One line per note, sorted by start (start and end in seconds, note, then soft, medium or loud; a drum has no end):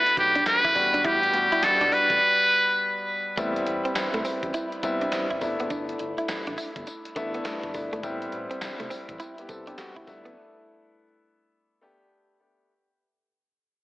0.00 0.78 A3 medium
0.00 0.75 B3 medium
0.00 0.76 D4 medium
0.00 0.76 F#4 medium
0.00 0.18 B4 loud
0.06 closed hi-hat medium
0.17 0.41 B1 loud
0.17 0.45 G4 medium
0.17 muted clean electric guitar stroke soft
0.17 kick medium
0.17 closed hi-hat medium
0.35 0.44 D4 medium
0.35 closed hi-hat medium
0.46 1.07 B4 loud
0.46 snare loud
0.46 clap medium
0.46 closed hi-hat medium
0.65 0.74 A1 medium
0.65 0.73 E4 medium
0.65 kick medium
0.65 closed hi-hat soft
0.75 0.91 A1 loud
0.75 1.25 G3 medium
0.75 1.25 B3 medium
0.75 1.25 D4 medium
0.75 1.25 F#4 medium
0.75 muted clean electric guitar stroke soft
0.75 kick medium
0.75 open hi-hat medium
0.94 1.03 G#1 loud
0.94 1.02 D4 medium
0.94 closed hi-hat medium
1.05 1.29 A1 loud
1.05 1.19 E4 medium
1.05 1.65 G4 medium
1.05 kick loud
1.05 closed hi-hat medium
1.23 closed hi-hat medium
1.33 1.49 A1 loud
1.33 2.13 G3 medium
1.33 2.13 B3 medium
1.33 2.13 D4 medium
1.33 2.13 F#4 medium
1.33 muted clean electric guitar stroke soft
1.33 closed hi-hat medium
1.52 1.61 E4 medium
1.52 closed hi-hat medium
1.63 1.70 B1 medium
1.63 1.95 A4 loud
1.63 muted clean electric guitar stroke soft
1.63 snare loud
1.63 clap medium
1.63 closed hi-hat medium
1.81 1.90 B1 medium
1.81 1.90 D4 medium
1.81 closed hi-hat medium
1.92 2.07 D4 medium
1.92 3.09 B4 loud
1.92 open hi-hat medium
2.10 2.19 A1 medium
2.10 kick loud
2.10 closed hi-hat medium
3.37 3.62 A1 loud
3.37 4.17 G3 medium
3.37 3.52 A3 medium
3.37 4.17 B3 medium
3.37 4.17 C4 medium
3.37 4.17 E4 loud
3.37 kick loud
3.37 closed hi-hat medium
3.37 tambourine medium
3.56 closed hi-hat medium
3.67 3.82 A1 loud
3.67 muted clean electric guitar stroke soft
3.67 closed hi-hat medium
3.85 3.94 C4 medium
3.85 closed hi-hat medium
3.96 4.04 C2 soft
3.96 muted clean electric guitar stroke soft
3.96 snare loud
3.96 clap medium
3.96 closed hi-hat medium
3.96 tambourine medium
4.14 4.23 C2 medium
4.14 4.23 A3 medium
4.14 closed hi-hat medium
4.25 4.40 C4 medium
4.25 open hi-hat medium
4.25 tambourine medium
4.43 4.52 A1 medium
4.43 kick loud
4.43 closed hi-hat medium
4.54 4.69 E4 medium
4.54 closed hi-hat medium
4.54 tambourine medium
4.72 closed hi-hat medium
4.83 5.07 C2 medium
4.83 5.24 G3 medium
4.83 5.24 B3 medium
4.83 5.24 C4 medium
4.83 5.24 E4 loud
4.83 muted clean electric guitar stroke soft
4.83 kick medium
4.83 closed hi-hat medium
4.83 tambourine medium
5.01 5.10 D4 medium
5.01 closed hi-hat medium
5.12 snare loud
5.12 clap medium
5.12 closed hi-hat medium
5.12 tambourine medium
5.30 5.40 A1 medium
5.30 5.39 E4 medium
5.30 kick medium
5.30 closed hi-hat soft
5.41 5.57 G1 loud
5.41 6.36 A3 medium
5.41 6.36 B3 medium
5.41 6.36 D4 medium
5.41 6.37 E4 medium
5.41 muted clean electric guitar stroke soft
5.41 kick medium
5.41 open hi-hat medium
5.41 tambourine medium
5.60 5.69 F#1 medium
5.60 5.69 B3 medium
5.60 closed hi-hat medium
5.70 5.95 G1 loud
5.70 5.85 D4 medium
5.70 kick loud
5.70 closed hi-hat medium
5.70 tambourine medium
5.89 closed hi-hat medium
5.99 6.15 G1 loud
5.99 muted clean electric guitar stroke soft
5.99 closed hi-hat medium
6.18 6.27 E4 medium
6.18 closed hi-hat medium
6.29 6.36 A1 medium
6.29 muted clean electric guitar stroke soft
6.29 snare loud
6.29 clap medium
6.29 closed hi-hat medium
6.29 tambourine medium
6.47 6.56 A1 medium
6.47 6.56 D4 medium
6.47 closed hi-hat medium
6.58 6.73 E4 medium
6.58 open hi-hat medium
6.58 tambourine medium
6.76 6.85 G1 medium
6.76 kick medium
6.76 closed hi-hat medium
6.87 muted clean electric guitar stroke soft
6.87 closed hi-hat medium
6.87 tambourine medium
7.05 closed hi-hat medium
7.16 7.40 A1 loud
7.16 7.57 A3 loud
7.16 7.57 B3 medium
7.16 7.31 D4 medium
7.16 7.57 D4 medium
7.16 7.57 E4 loud
7.16 kick medium
7.16 closed hi-hat medium
7.16 tambourine medium
7.34 7.43 B3 medium
7.34 closed hi-hat medium
7.45 7.60 A3 medium
7.45 snare loud
7.45 clap medium
7.45 closed hi-hat medium
7.45 tambourine medium
7.63 7.72 G1 medium
7.63 kick loud
7.63 closed hi-hat soft
7.74 7.90 G1 medium
7.74 7.96 A3 medium
7.74 7.96 B3 medium
7.74 7.96 D4 medium
7.74 7.96 E4 medium
7.74 muted clean electric guitar stroke soft
7.74 kick medium
7.74 open hi-hat medium
7.74 tambourine medium
7.93 8.02 G#1 medium
7.93 8.01 A3 medium
7.93 closed hi-hat medium
8.03 8.28 A1 loud
8.03 8.83 G3 medium
8.03 8.18 A3 medium
8.03 8.83 B3 medium
8.03 8.83 C4 medium
8.03 8.83 E4 loud
8.03 kick loud
8.03 closed hi-hat medium
8.03 tambourine medium
8.22 closed hi-hat medium
8.32 8.48 A1 loud
8.32 muted clean electric guitar stroke soft
8.32 closed hi-hat medium
8.51 8.59 C4 medium
8.51 closed hi-hat medium
8.61 8.69 C2 medium
8.61 muted clean electric guitar stroke soft
8.61 snare loud
8.61 clap medium
8.61 closed hi-hat medium
8.61 tambourine medium
8.80 8.89 C2 medium
8.80 8.89 A3 medium
8.80 closed hi-hat medium
8.90 9.05 C4 medium
8.90 open hi-hat medium
8.90 tambourine medium
9.09 9.18 A1 medium
9.09 kick loud
9.09 closed hi-hat medium
9.20 9.38 G3 medium
9.20 9.35 E4 medium
9.20 9.37 E4 medium
9.20 closed hi-hat medium
9.20 tambourine medium
9.38 9.49 B3 medium
9.38 9.49 G4 medium
9.38 closed hi-hat medium
9.49 9.73 C2 medium
9.49 9.67 C4 medium
9.49 9.67 A4 medium
9.49 muted clean electric guitar stroke soft
9.49 kick medium
9.49 closed hi-hat medium
9.49 tambourine medium
9.67 9.78 B3 medium
9.67 9.76 D4 medium
9.67 9.78 G4 medium
9.67 closed hi-hat medium
9.78 9.96 A3 medium
9.78 9.96 F#4 medium
9.78 snare loud
9.78 clap medium
9.78 closed hi-hat medium
9.78 tambourine medium
9.96 10.06 A1 medium
9.96 10.25 G3 medium
9.96 10.05 E4 medium
9.96 10.07 E4 medium
9.96 kick medium
9.96 closed hi-hat soft
10.07 10.23 G1 loud
10.07 11.02 A3 medium
10.07 11.02 B3 medium
10.07 11.02 D4 medium
10.07 11.02 E4 loud
10.07 muted clean electric guitar stroke soft
10.07 kick medium
10.07 open hi-hat medium
10.07 tambourine medium
10.25 10.35 F#1 medium
10.25 10.34 B3 medium
10.25 closed hi-hat soft
11.81 12.22 A3 loud
11.81 12.23 B3 medium
11.81 12.23 D4 medium
11.81 12.23 G4 loud
12.40 12.62 A3 medium
12.40 12.62 B3 medium
12.40 12.62 D4 medium
12.40 12.62 G4 medium